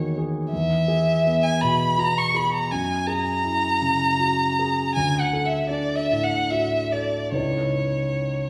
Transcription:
Already playing: grand piano E2 D#3 A#3 F#4 G#4, violin C#5
0.18 grand piano G#4
0.51 grand piano E2, violin E5
0.88 grand piano G#4
1.25 grand piano B3
1.43 violin G#5
1.61 grand piano B2, violin B5
1.98 grand piano F#4, violin A#5
2.18 violin C#6
2.35 grand piano G#4, violin B5
2.54 violin A#5
2.71 grand piano F#2, violin G#5
3.06 grand piano G#4, violin A#5
3.44 grand piano E4
3.82 grand piano C#3
4.20 grand piano F#4
4.59 grand piano G#4
4.95 grand piano D2, violin G#5
5.20 violin F#5
5.33 grand piano A4
5.45 violin E5
5.69 grand piano D4, violin D5
5.95 violin E5
6.10 grand piano A2
6.23 violin F#5
6.51 grand piano F#4, violin E5
6.92 grand piano A4, violin D5
7.32 grand piano C#2 D#4 E4 B4 C#5, violin C#5

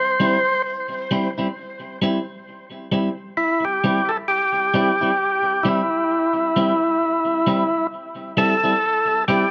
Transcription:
Already playing: tonewheel organ C5
0.20 clean electric guitar G3 C4 E4
1.11 clean electric guitar G3 C4 E4
1.38 clean electric guitar G3 C4 E4
2.02 clean electric guitar G3 C4 E4
2.92 clean electric guitar G3 C4 E4
3.37 tonewheel organ E4
3.65 tonewheel organ G4
3.84 clean electric guitar G3 C4 E4
4.09 tonewheel organ A4
4.28 tonewheel organ G4
4.74 clean electric guitar G3 C4 E4
5.01 clean electric guitar G3 C4 E4
5.63 clean electric guitar G3 C4 E4, tonewheel organ E4
6.56 clean electric guitar G3 C4 E4
7.47 clean electric guitar G3 C4 E4
8.37 clean electric guitar G3 C4 E4, tonewheel organ A4
8.63 clean electric guitar G3 C4 E4
9.28 clean electric guitar G3 C4 E4, tonewheel organ G4

